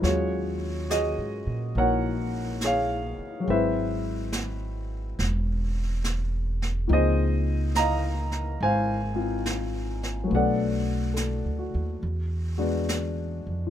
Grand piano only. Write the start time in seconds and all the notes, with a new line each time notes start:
Already playing: E4
0.02 F#3 G#3 C#4 F4 F#4 C#5
0.07 G#4
0.90 F#4 G#4 D#5
1.76 A#3 D#4 F#4 A#4 C#5 F#5
2.64 G#4 C#5 F5
3.40 F#3
3.44 G#3 C4
3.50 E4 B4 C5 E5
6.88 F3 A#3 C4 D#4
6.93 G#4 C5 D#5
7.76 D#5 F5 A#5
8.63 C5 F5 G#5
9.14 C4 F4
10.24 F#3 A3
10.31 B3
10.35 D4 A4 D5 F#5
11.14 A4
11.59 F#4
12.58 G#3 B3 D4 F#4
13.67 F3